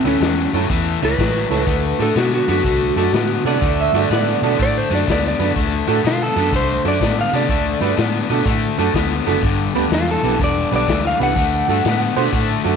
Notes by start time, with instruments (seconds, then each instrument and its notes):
0.04 fingered electric bass D2, overdriven electric guitar A2 E3, upright piano A3 C#4 E4 A4, electric slide guitar C#4, closed hi-hat
0.20 fingered electric bass E2, overdriven electric guitar A2 F#3, snare, closed hi-hat
0.53 fingered electric bass F#2, overdriven electric guitar A2 F#3, upright piano A3 C#4 E4 A4, closed hi-hat
0.69 fingered electric bass E2, overdriven electric guitar A2 E3, kick, closed hi-hat
1.02 fingered electric bass C#2, overdriven electric guitar A2 E3, upright piano A3 C#4 E4 A4, electric slide guitar B4, snare, closed hi-hat
1.18 fingered electric bass A1, overdriven electric guitar A2 F#3, kick, snare, closed hi-hat
1.50 fingered electric bass C#2, overdriven electric guitar A2 F#3, upright piano A3 C#4 E4 A4, snare, closed hi-hat
1.67 fingered electric bass D2, overdriven electric guitar D3 A3, kick, snare, closed hi-hat
1.98 fingered electric bass A2, overdriven electric guitar D3 A3, upright piano A3 D4 F#4 A4, snare, closed hi-hat
2.02 electric slide guitar A4
2.15 fingered electric bass B2, overdriven electric guitar D3 B3, electric slide guitar F#4, snare, closed hi-hat
2.35 electric slide guitar F#4
2.48 fingered electric bass F#2, overdriven electric guitar D3 B3, upright piano A3 D4 F#4 A4, closed hi-hat
2.52 electric slide guitar F#4
2.64 fingered electric bass C2, overdriven electric guitar D3 A3, kick, closed hi-hat
2.96 fingered electric bass F#2, overdriven electric guitar D3 A3, upright piano A3 D4 F#4 A4, snare, closed hi-hat
3.12 fingered electric bass A2, overdriven electric guitar D3 B3, snare, closed hi-hat
3.45 fingered electric bass C3, overdriven electric guitar D3 B3, upright piano A3 D4 F#4 A4, clean electric guitar D5, closed hi-hat
3.61 fingered electric bass D2, overdriven electric guitar D3 A3, kick, snare, closed hi-hat
3.81 clean electric guitar E5
3.93 fingered electric bass G2, overdriven electric guitar D3 A3, upright piano A3 D4 F#4 A4, clean electric guitar D5, snare, closed hi-hat
4.10 fingered electric bass A2, overdriven electric guitar D3 B3, clean electric guitar D5, snare, closed hi-hat
4.42 fingered electric bass B2, overdriven electric guitar D3 B3, upright piano A3 D4 F#4 A4, closed hi-hat
4.59 fingered electric bass A2, overdriven electric guitar D3 A3, electric slide guitar D5, kick, closed hi-hat
4.78 electric slide guitar C5
4.90 fingered electric bass F#2, overdriven electric guitar D3 A3, upright piano A3 D4 F#4 A4, closed hi-hat
4.94 electric slide guitar D5, snare
5.07 fingered electric bass D2, overdriven electric guitar D3 B3, kick, snare, closed hi-hat
5.12 electric slide guitar D5
5.28 electric slide guitar D5
5.39 fingered electric bass F#2, overdriven electric guitar D3 B3, upright piano A3 D4 F#4 B4, snare, closed hi-hat
5.56 fingered electric bass D2, overdriven electric guitar D3 A3, kick, crash
5.87 fingered electric bass A2, overdriven electric guitar D3 A3, upright piano A3 D4 F#4 A4, snare, closed hi-hat
6.03 fingered electric bass B2, overdriven electric guitar D3 B3, electric slide guitar F4, snare, closed hi-hat
6.23 electric slide guitar A4
6.36 fingered electric bass F#2, overdriven electric guitar D3 B3, upright piano A3 D4 F#4 A4, closed hi-hat
6.52 fingered electric bass C2, overdriven electric guitar D3 A3, electric slide guitar C5, kick, snare, closed hi-hat
6.84 fingered electric bass F#2, overdriven electric guitar D3 A3, upright piano A3 D4 F#4 A4, electric slide guitar D5, closed hi-hat
7.00 fingered electric bass A2, overdriven electric guitar D3 B3, kick, snare, closed hi-hat
7.21 electric slide guitar F5
7.33 fingered electric bass C3, overdriven electric guitar D3 B3, upright piano A3 D4 F#4 A4, electric slide guitar D5, snare, closed hi-hat
7.49 fingered electric bass D2, overdriven electric guitar D3 A3, kick, closed hi-hat
7.81 fingered electric bass G2, overdriven electric guitar D3 A3, upright piano A3 D4 F#4 B4, closed hi-hat
7.96 fingered electric bass A2, overdriven electric guitar D3 B3, snare, closed hi-hat
8.29 fingered electric bass B2, overdriven electric guitar D3 B3, upright piano A3 D4 F#4 A4, closed hi-hat
8.45 fingered electric bass A2, overdriven electric guitar D3 A3, kick, snare, closed hi-hat
8.77 fingered electric bass F#2, overdriven electric guitar D3 A3, upright piano A3 D4 F#4 A4, closed hi-hat
8.94 fingered electric bass D2, overdriven electric guitar D3 B3, kick, snare, closed hi-hat
9.26 fingered electric bass F#1, overdriven electric guitar D3 B3, upright piano A3 D4 F#4 A4, snare, closed hi-hat
9.42 fingered electric bass G1, overdriven electric guitar G2 D3, kick, closed hi-hat
9.74 fingered electric bass D2, overdriven electric guitar G2 D3, upright piano B3 D4 G4 B4, closed hi-hat
9.90 fingered electric bass E2, overdriven electric guitar G2 E3, snare, closed hi-hat
9.94 electric slide guitar F4
10.11 electric slide guitar A4
10.22 fingered electric bass B1, overdriven electric guitar G2 E3, upright piano B3 D4 G4 B4, closed hi-hat
10.39 fingered electric bass E1, overdriven electric guitar G2 D3, kick, snare, closed hi-hat
10.44 electric slide guitar D5
10.71 fingered electric bass B1, overdriven electric guitar G2 D3, upright piano B3 D4 G4 B4, closed hi-hat
10.76 electric slide guitar D5
10.88 fingered electric bass D2, overdriven electric guitar G2 E3, kick, snare, closed hi-hat
11.07 electric slide guitar F5
11.19 fingered electric bass C2, overdriven electric guitar G2 E3, upright piano B3 D4 G4 B4, closed hi-hat
11.23 electric slide guitar F#5
11.36 fingered electric bass D2, overdriven electric guitar D3 A3, kick, closed hi-hat
11.68 fingered electric bass G2, overdriven electric guitar D3 A3, upright piano A3 D4 F#4 A4, closed hi-hat
11.84 fingered electric bass A2, overdriven electric guitar D3 B3, snare, closed hi-hat
12.16 fingered electric bass B2, overdriven electric guitar D3 B3, upright piano A3 D4 F#4 C5, closed hi-hat
12.32 fingered electric bass A2, overdriven electric guitar D3 A3, kick, closed hi-hat
12.64 fingered electric bass F#2, overdriven electric guitar D3 A3, upright piano A3 D4 F#4 A4, closed hi-hat